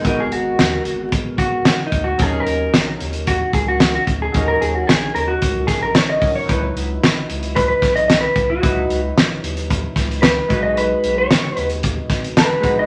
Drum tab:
HH |x-x-x-x-x-x-x-x-|x-x-x-xxx-x-x-x-|x-x-x-x-x-x-x-o-|x-x-x-xxx-xxx-x-|
SD |----o-------o---|----o-------o---|----o-----o-o---|----o-----o-o---|
BD |o-------o-o---o-|o-------o-o---o-|o-------o-o---o-|o-------o-o---o-|

HH |x-x-x-xxx-xxx-x-|x-x-x-xxx-xxx-x-|
SD |----o-----o-o---|----o-----o-o---|
BD |o-------o-o---o-|--------o-o---o-|